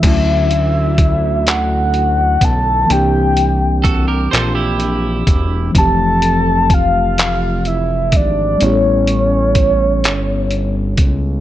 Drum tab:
CC |x-----|------|------|------|
HH |xxxxxx|xxxxxx|xxxxxx|xxxxxx|
CP |---x--|---x--|---x--|---x--|
BD |o-o--o|--o--o|o-o--o|--o--o|